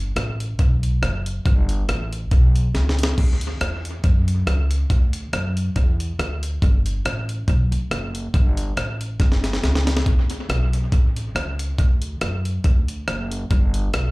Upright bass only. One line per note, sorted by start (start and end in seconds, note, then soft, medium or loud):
0.16 0.53 A1 loud
0.59 0.96 B1 loud
1.02 1.39 F#1 medium
1.46 1.82 G1 loud
1.88 2.25 A1 medium
2.31 2.68 B1 loud
2.75 3.11 C#2 medium
3.18 3.54 D2 loud
3.61 3.97 E2 medium
4.04 4.41 F#2 loud
4.47 4.83 C#2 loud
4.90 5.26 D2 loud
5.33 5.70 F#2 medium
5.76 6.12 E2 loud
6.19 6.56 D2 loud
6.62 6.99 G1 loud
7.05 7.42 A1 loud
7.48 7.68 B1 loud
7.71 7.88 D2 medium
7.91 8.28 F#1 medium
8.34 8.71 G1 loud
8.76 9.13 A1 medium
9.20 9.56 G1 loud
9.63 10.00 C#2 loud
10.06 10.43 D2 loud
10.49 10.86 B1 medium
10.92 11.29 A1 medium
11.35 11.72 C#2 medium
11.78 12.15 D2 loud
12.21 12.58 F#2 medium
12.64 13.01 D2 loud
13.08 13.45 F#1 medium
13.50 13.87 G1 loud
13.94 14.11 B1 medium